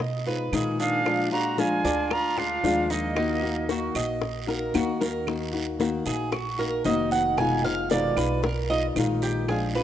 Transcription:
Already playing: upright bass B2, cuban tres D#5
0.00 muted nylon-string guitar stroke, high bongo, long guiro
0.26 nylon-string guitar G#3 D#4 F4, cuban tres B4, high bongo
0.52 upright bass A#2, nylon-string guitar D#3 G#3 D#4 F4, cuban tres G#4, high bongo, low bongo, short guiro, claves
0.79 trumpet D4, cuban tres G#4, flute F5, short guiro
1.05 nylon-string guitar F3 G#3 D4 F4, high bongo, long guiro, claves
1.31 nylon-string guitar G#3 D4 F4, cuban tres F4, trumpet F#4, flute A#5, high bongo
1.57 nylon-string guitar F3 G#3 D4 F4, trumpet F4, flute G#5, high bongo, short guiro
1.84 upright bass D2, nylon-string guitar G#3 D4 F4, cuban tres D4, high bongo, short guiro
2.10 trumpet F4, flute A#5, muted nylon-string guitar stroke, high bongo, long guiro, claves
2.37 nylon-string guitar G#3 D4 F4, trumpet D4, cuban tres F4, flute F5, high bongo
2.63 upright bass D#2, nylon-string guitar F3 G#3 D4 F4, high bongo, low bongo, short guiro
2.90 trumpet A#3, cuban tres D#4, flute D#5, short guiro
3.16 nylon-string guitar D#3 A#3 D#4 F#4, cuban tres D#4, high bongo, long guiro, claves
3.42 nylon-string guitar A#3 D#4 F#4, high bongo
3.69 nylon-string guitar D#3 A#3 D#4 F#4, cuban tres F#4, high bongo, short guiro
3.95 upright bass A#1, nylon-string guitar A#3 D#4 F#4, cuban tres D#5, high bongo, short guiro, claves
4.22 muted nylon-string guitar stroke, high bongo, long guiro
4.47 nylon-string guitar A#3 D#4 F#4, cuban tres A#4, high bongo
4.73 upright bass D#2, nylon-string guitar D#3 A#3 D#4 F#4, cuban tres F#4, low bongo, short guiro, claves
5.01 cuban tres A#4, low bongo, short guiro
5.26 nylon-string guitar D#3 A#3 D#4 F#4, high bongo, long guiro, claves
5.53 nylon-string guitar A#3 D#4 F#4, high bongo
5.79 nylon-string guitar D#3 A#3 D#4 F#4, high bongo, short guiro
6.06 upright bass A#1, nylon-string guitar A#3 D#4 F#4, cuban tres G#4, high bongo, short guiro
6.32 cuban tres F#4, muted nylon-string guitar stroke, high bongo, long guiro, claves
6.58 nylon-string guitar A#3 D#4 F#4, cuban tres A#4, high bongo
6.84 upright bass F1, nylon-string guitar D#3 A#3 D#4 F#4, cuban tres D#5, high bongo, low bongo, short guiro
7.11 cuban tres F#5, short guiro
7.37 nylon-string guitar B2 D#3 G#3 D#4 F4, cuban tres G#5, high bongo, long guiro, claves
7.64 nylon-string guitar G#3 D#4 F4, cuban tres F5, high bongo
7.90 nylon-string guitar B2 D#3 G#3 D#4 F4, cuban tres D5, high bongo, short guiro
8.16 upright bass B1, nylon-string guitar G#3 D#4 F4, cuban tres B4, high bongo, short guiro, claves
8.43 cuban tres A#4, muted nylon-string guitar stroke, high bongo, long guiro
8.70 nylon-string guitar G#3 D#4 F4, cuban tres D#5, high bongo
8.96 upright bass A#1, nylon-string guitar D#3 G#3 D#4 F4, high bongo, low bongo, short guiro, claves
9.22 cuban tres G4, short guiro
9.48 nylon-string guitar F3 G#3 D4 F4, cuban tres G#4, high bongo, long guiro, claves
9.75 nylon-string guitar G#3 D4 F4, cuban tres B4, high bongo

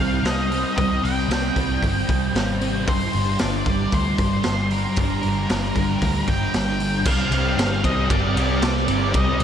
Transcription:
Already playing: distorted electric guitar C3 G3 C4, lead electric guitar F5
0.00 picked electric bass C2
0.23 picked electric bass C2, distorted electric guitar C3, snare, open hi-hat
0.27 distorted electric guitar G3 C4, lead electric guitar D#5
0.50 distorted electric guitar G3 C4, open hi-hat
0.75 picked electric bass C2, distorted electric guitar C3 G3 C4, lead electric guitar D#5, kick, open hi-hat
1.02 picked electric bass C2, distorted electric guitar G3 C4, lead electric guitar G5, open hi-hat
1.28 picked electric bass C2, distorted electric guitar C3 G3 C4, snare, open hi-hat
1.54 picked electric bass C2, distorted electric guitar G3 C4, kick, open hi-hat
1.82 picked electric bass G1, kick, open hi-hat
2.09 picked electric bass C2, kick, open hi-hat
2.33 picked electric bass G#1, distorted electric guitar C3 G3 C4, snare, open hi-hat
2.61 distorted electric guitar G3 C4, open hi-hat
2.87 picked electric bass G1, distorted electric guitar G2 D3 G3, lead electric guitar C5, kick, open hi-hat
3.13 picked electric bass G1, distorted electric guitar G3, open hi-hat
3.18 distorted electric guitar D3
3.39 picked electric bass G1, distorted electric guitar G2 D3, lead electric guitar D5, snare, open hi-hat
3.44 distorted electric guitar G3
3.66 picked electric bass G1, distorted electric guitar G3, kick, open hi-hat
3.71 distorted electric guitar D3
3.92 picked electric bass D2, lead electric guitar C5, kick, open hi-hat
4.18 picked electric bass G1, kick, open hi-hat
4.43 picked electric bass G1, distorted electric guitar G2 D3, snare, open hi-hat
4.48 distorted electric guitar G3
4.71 distorted electric guitar G3, lead electric guitar A#4, open hi-hat
4.75 distorted electric guitar D3
4.96 picked electric bass G1, distorted electric guitar G2 D3, lead electric guitar A#4, kick, open hi-hat
5.02 distorted electric guitar G3
5.23 picked electric bass G1, distorted electric guitar G3, open hi-hat
5.27 distorted electric guitar D3
5.49 picked electric bass G1, distorted electric guitar G2 D3 G3, snare, open hi-hat
5.75 picked electric bass G1, distorted electric guitar D3 G3, kick, open hi-hat
6.02 picked electric bass D2, kick, open hi-hat
6.27 picked electric bass G1, lead electric guitar G5, kick, open hi-hat
6.54 picked electric bass G1, distorted electric guitar G2 D3 G3, lead electric guitar G5, snare, open hi-hat
6.79 distorted electric guitar D3 G3, open hi-hat
7.04 picked electric bass C2, distorted electric guitar C3 G3 C4, lead electric guitar F5, kick, crash
7.31 picked electric bass C2, ride
7.58 picked electric bass G1, distorted electric guitar C3 G3 C4, snare, ride
7.84 picked electric bass C2, distorted electric guitar G3 C4, lead electric guitar D#5, kick, ride
8.10 picked electric bass G1, lead electric guitar D5, kick, ride
8.36 picked electric bass C2, ride
8.62 picked electric bass C2, distorted electric guitar C3 G3 C4, lead electric guitar D5, snare, ride
8.87 picked electric bass G1, distorted electric guitar G3 C4, ride
9.13 picked electric bass C2, distorted electric guitar C3 G3 C4, kick, ride
9.18 lead electric guitar D#5
9.40 picked electric bass C2, ride

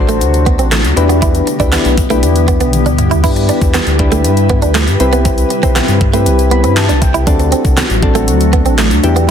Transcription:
Already playing: analog synth bass A1, ambient pad C3 F#3 A3 D4 F#4, synth keys D4 F#4 A4 C5
0.09 clean electric guitar A3, closed hi-hat, shaker
0.21 analog synth bass D2, muted clean electric guitar stroke, closed hi-hat, shaker
0.34 closed hi-hat, shaker
0.46 clean electric guitar B3, kick, closed hi-hat
0.59 analog synth bass A1, clean electric guitar C4, closed hi-hat, shaker
0.72 clean electric guitar A3, snare, clap, closed hi-hat, shaker
0.84 analog synth bass D2, closed hi-hat, shaker
0.96 analog synth bass E2, ambient pad D3 G3 B3 E4 G4, synth keys D4 E4 G4 B4, muted clean electric guitar stroke, closed hi-hat, shaker
1.09 clean electric guitar B3, closed hi-hat, shaker
1.22 clean electric guitar E4, kick, closed hi-hat, shaker
1.35 closed hi-hat, shaker
1.47 muted clean electric guitar stroke, closed hi-hat, shaker
1.60 analog synth bass D2, synth keys D4 E4 G4 B4, clean electric guitar D4, kick, closed hi-hat, shaker
1.72 clean electric guitar B3, snare, clap, closed hi-hat, shaker
1.85 analog synth bass B1, closed hi-hat, shaker
1.97 muted clean electric guitar stroke, kick, closed hi-hat, shaker
2.10 clean electric guitar A3, synth keys D4 E4 G4 B4, closed hi-hat, shaker
2.23 analog synth bass E2, muted clean electric guitar stroke, closed hi-hat, shaker
2.36 closed hi-hat, shaker
2.48 clean electric guitar B3, kick, closed hi-hat, shaker
2.60 analog synth bass B1, clean electric guitar B3, closed hi-hat, shaker
2.73 closed hi-hat, high tom, shaker
2.86 analog synth bass D2, clean electric guitar D4, closed hi-hat, mid tom, shaker
2.98 muted clean electric guitar stroke, closed hi-hat, mid tom, shaker
3.11 clean electric guitar E4, closed hi-hat, floor tom, shaker
3.23 analog synth bass G2, synth keys D4 E4 G4 B4, clean electric guitar E4, ambient pad E4 B4, kick, crash, shaker
3.36 muted clean electric guitar stroke, closed hi-hat, shaker
3.49 clean electric guitar D4, closed hi-hat, shaker
3.61 analog synth bass E2, kick, closed hi-hat, shaker
3.74 clean electric guitar B3, snare, clap, closed hi-hat, shaker
3.87 analog synth bass D2, closed hi-hat, shaker
3.99 synth keys D4 E4 G4 B4, muted clean electric guitar stroke, kick, closed hi-hat
4.12 clean electric guitar A3, closed hi-hat, shaker
4.24 analog synth bass G2, muted clean electric guitar stroke, closed hi-hat, shaker
4.37 closed hi-hat, shaker
4.49 clean electric guitar B3, kick, closed hi-hat
4.62 analog synth bass D2, clean electric guitar D4, closed hi-hat, shaker
4.75 clean electric guitar A3, snare, clap, closed hi-hat, shaker
4.87 analog synth bass G2, closed hi-hat, shaker
5.00 analog synth bass C2, ambient pad C3, synth keys C4 E4 G4 B4, muted clean electric guitar stroke, closed hi-hat, shaker
5.13 clean electric guitar B3, closed hi-hat, shaker
5.25 clean electric guitar C4, kick, closed hi-hat, shaker
5.38 closed hi-hat, shaker
5.50 muted clean electric guitar stroke, closed hi-hat, shaker
5.63 analog synth bass B1, clean electric guitar C4, synth keys C4 E4 G4 B4, kick, closed hi-hat, shaker
5.76 clean electric guitar B3, snare, clap, closed hi-hat, shaker
5.88 analog synth bass G2, closed hi-hat, shaker
6.01 muted clean electric guitar stroke, kick, closed hi-hat
6.13 clean electric guitar A3, synth keys C4 E4 G4 B4, closed hi-hat, shaker
6.26 analog synth bass C2, muted clean electric guitar stroke, closed hi-hat, shaker
6.39 closed hi-hat, shaker
6.51 clean electric guitar B3, synth keys B5, closed hi-hat
6.64 analog synth bass G2, clean electric guitar C4, closed hi-hat, shaker
6.77 synth keys A5, snare, clap, closed hi-hat, shaker
6.89 analog synth bass C2, clean electric guitar D4, closed hi-hat, shaker
7.02 synth keys G5, muted clean electric guitar stroke, kick, closed hi-hat, shaker
7.14 clean electric guitar E4, closed hi-hat, shaker
7.27 analog synth bass D2, ambient pad F#3 A3 D4 F#4, synth keys C4 D4 F#4 A4, clean electric guitar D4, kick, closed hi-hat, shaker
7.39 muted clean electric guitar stroke, closed hi-hat, shaker
7.52 clean electric guitar C4, closed hi-hat, shaker
7.65 analog synth bass C2, kick, closed hi-hat, shaker
7.77 clean electric guitar B3, snare, clap, closed hi-hat, shaker
7.90 analog synth bass A1, closed hi-hat, shaker
8.02 synth keys C4 D4 F#4 A4, muted clean electric guitar stroke, kick, closed hi-hat
8.15 clean electric guitar A3, closed hi-hat, shaker
8.28 analog synth bass D2, muted clean electric guitar stroke, closed hi-hat, shaker
8.41 closed hi-hat, shaker
8.53 clean electric guitar B3, kick, closed hi-hat
8.66 analog synth bass A1, clean electric guitar C4, closed hi-hat, shaker
8.78 clean electric guitar A3, snare, clap, closed hi-hat, shaker
8.91 analog synth bass D2, closed hi-hat, shaker
9.03 analog synth bass E2, ambient pad E3 G3 B3 G4, synth keys B3 D4 E4 G4, muted clean electric guitar stroke, closed hi-hat, shaker
9.16 clean electric guitar B3, closed hi-hat, shaker

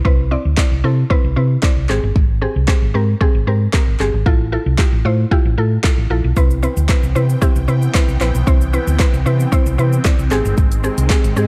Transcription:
0.05 fingered electric bass C2, synth pluck C4 E4 B4, kick
0.31 synth pluck C4 E4 D5
0.45 fingered electric bass D2
0.57 synth pluck C4 E4 D5, kick, snare, clap
0.72 fingered electric bass C2
0.84 fingered electric bass C3, synth pluck C4 E4 A4
1.10 synth pluck C4 E4 B4, kick
1.24 fingered electric bass C2
1.36 fingered electric bass C3, synth pluck C4 E4 B4
1.62 synth pluck C4 E4 D5, kick, snare, clap
1.77 fingered electric bass C2
1.89 fingered electric bass G#1, synth pluck C4 G4 G#4, clap
2.03 fingered electric bass G1
2.16 fingered electric bass G#1, kick
2.42 synth pluck C4 G4 G#4
2.56 fingered electric bass C2
2.68 synth pluck C4 G4 G#4, kick, snare, clap
2.82 fingered electric bass G#1
2.94 fingered electric bass G#2, synth pluck C4 G4 A#4
3.21 synth pluck C4 G4 G#4, kick
3.35 fingered electric bass G#1
3.47 fingered electric bass G#2, synth pluck C4 G4 A#4
3.73 synth pluck C4 G4 A#4, kick, snare, clap
3.87 fingered electric bass G#1
4.00 fingered electric bass G1, synth pluck C4 G4 G#4, clap
4.14 fingered electric bass G#1
4.26 fingered electric bass A1, synth pluck E4 F4 A4, kick
4.52 synth pluck E4 F4 A4
4.66 fingered electric bass C2
4.78 synth pluck E4 F4 G4, kick, snare, clap
4.93 fingered electric bass A1
5.05 fingered electric bass A2, synth pluck E4 F4 C5
5.31 synth pluck E4 F4 G4, kick
5.45 fingered electric bass A1
5.58 fingered electric bass A2, synth pluck E4 F4 A4
5.83 synth pluck E4 F4 A4, kick, snare, clap
5.98 fingered electric bass A1
6.10 fingered electric bass A#1, synth pluck E4 F4 A4
6.24 fingered electric bass B1
6.37 fingered electric bass C2, supersaw synth E3 B3 C4 G5, synth pluck C4 E4 B4, kick, shaker
6.51 shaker
6.63 synth pluck C4 E4 B4, shaker
6.77 fingered electric bass D2, shaker
6.88 synth pluck C4 E4 B4, kick, snare, clap, shaker
7.03 fingered electric bass C2, shaker
7.15 fingered electric bass C3, synth pluck C4 E4 B4, shaker
7.30 shaker
7.42 synth pluck C4 E4 G4, kick, shaker
7.56 fingered electric bass C2, shaker
7.68 fingered electric bass C3, synth pluck C4 E4 B4, shaker
7.82 shaker
7.94 synth pluck C4 E4 B4, kick, snare, clap, shaker
8.08 fingered electric bass C2, shaker
8.21 fingered electric bass A#1, synth pluck C4 E4 B4, clap, shaker
8.35 fingered electric bass B1, shaker
8.47 synth pluck C4 E4 C5, kick, shaker
8.61 shaker
8.73 synth pluck C4 E4 B4, shaker
8.87 fingered electric bass D2, shaker
8.99 synth pluck C4 E4 B4, kick, snare, clap, shaker
9.14 fingered electric bass C2, shaker
9.26 fingered electric bass C3, synth pluck C4 E4 B4, shaker
9.40 shaker
9.52 synth pluck C4 E4 C5, kick, shaker
9.66 fingered electric bass C2, shaker
9.78 fingered electric bass C3, synth pluck C4 E4 B4, shaker
9.93 shaker
10.04 synth pluck C4 E4 D5, kick, snare, clap, shaker
10.19 fingered electric bass C2, shaker
10.31 fingered electric bass G#1, supersaw synth D#3 G#3, synth pluck C4 G4 G#4, clap, shaker
10.45 fingered electric bass G1, shaker
10.58 fingered electric bass G#1, kick, shaker
10.72 closed hi-hat, shaker
10.84 synth pluck C4 G4 G#4, shaker
10.98 fingered electric bass C2, closed hi-hat, shaker
11.09 synth pluck C4 G4 G#4, kick, snare, clap, shaker
11.24 fingered electric bass G#1, closed hi-hat, shaker
11.36 fingered electric bass G#2, synth pluck C4 G4 G#4, shaker

